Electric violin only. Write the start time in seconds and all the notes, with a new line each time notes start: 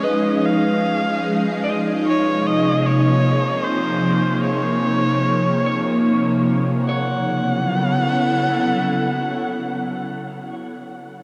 0.04 D#5
0.45 F5
2.08 C#5
2.47 D#5
2.86 C#5
3.64 C5
4.44 C#5
6.88 F#5